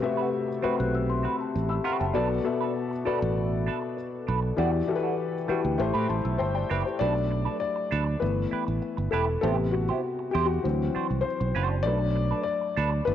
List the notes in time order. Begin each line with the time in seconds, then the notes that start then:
Already playing: C3 A3 F#4 B4 E5
0.02 C3 A3 F#4 B4 E5, muted clean electric guitar stroke
0.17 C4 F#4 B4
0.48 muted clean electric guitar stroke
0.62 A3 C4 F#4 B4 E5, muted fingered electric bass stroke
0.78 B1 F#6, muted clean electric guitar stroke
0.93 E6, muted clean electric guitar stroke
1.10 C6
1.23 C4 F#4 B4 B5
1.40 A5, muted clean electric guitar stroke
1.56 A1
1.69 B5 E6, muted clean electric guitar stroke
1.84 C4 F#4 B4 F#5 C6
1.99 F#1 E5 A5, muted clean electric guitar stroke
2.14 B1 B2 B3 D4 F#4 A4 B4 D5
2.30 muted clean electric guitar stroke
2.44 B2 B3 F#4 A4 E5, muted clean electric guitar stroke
2.61 D4 A4 B4
2.91 muted clean electric guitar stroke
3.05 B2 B3 D4 F#4 A4 B4 D5, muted fingered electric bass stroke
3.21 A1, muted clean electric guitar stroke
3.37 muted clean electric guitar stroke
3.66 D4 A4 B4
3.82 muted clean electric guitar stroke
3.97 muted clean electric guitar stroke
4.27 B1 D4 A4 B4
4.43 muted clean electric guitar stroke
4.57 E2 E3 G3 D4 E4 F#4 G4 D5
4.73 muted clean electric guitar stroke
4.87 E3 E4 F#4 G4 A4, muted clean electric guitar stroke
4.96 B4
5.03 G3 D4 F#4
5.33 muted clean electric guitar stroke
5.47 E3 G3 D4 E4 F#4 G4 B4, muted fingered electric bass stroke
5.65 D2 G5, muted clean electric guitar stroke
5.78 A1 A3 E4 G4 B4 C5 A5, muted clean electric guitar stroke
5.94 A2 C4 G4 B4 B5
6.09 A1 A5 C6
6.24 B1 E6, muted clean electric guitar stroke
6.38 G1 C5 E5 G5 A5, muted clean electric guitar stroke
6.55 D5 G5, muted clean electric guitar stroke
6.69 F#1 C4 G4 B4 E5
6.85 G4 C5, muted clean electric guitar stroke
6.99 B1 F#3 A3 D4 A4 B4 D5
7.15 muted clean electric guitar stroke
7.30 muted clean electric guitar stroke
7.45 D4 A4 B4
7.60 D5
7.76 muted clean electric guitar stroke
7.91 D2 D4 A4 B4
8.06 muted clean electric guitar stroke
8.20 G1 E3 A3 B3 B4, muted clean electric guitar stroke
8.51 E4 G4 B4, muted fingered electric bass stroke
8.67 A1, muted clean electric guitar stroke
8.82 muted clean electric guitar stroke
8.97 G1, muted clean electric guitar stroke
9.11 E1 E4 G4 A4 B4
9.27 muted clean electric guitar stroke
9.41 A1 C3 G3 B3 E4 G4 A4 C5
9.58 muted clean electric guitar stroke
9.71 F#4, muted clean electric guitar stroke
9.89 E4 G4 C5
10.19 muted clean electric guitar stroke
10.31 E2 E4 G4 C5
10.46 F#4, muted clean electric guitar stroke
10.63 D2 E3 F#3 C4, muted clean electric guitar stroke
10.95 D4 F#4 C5, muted fingered electric bass stroke
11.10 C2, muted clean electric guitar stroke
11.21 C5, muted clean electric guitar stroke
11.40 B1, muted clean electric guitar stroke
11.55 F#1 D4 F#4 C5
11.70 muted clean electric guitar stroke
11.83 B1 F#3 A3 D4 A4 D5
11.87 B4
12.01 muted clean electric guitar stroke
12.16 muted clean electric guitar stroke
12.31 D4 A4 B4
12.43 D5
12.61 muted clean electric guitar stroke
12.77 D2 D4 A4 B4
12.92 muted clean electric guitar stroke
13.05 G1 E3 A3 B3 B4, muted clean electric guitar stroke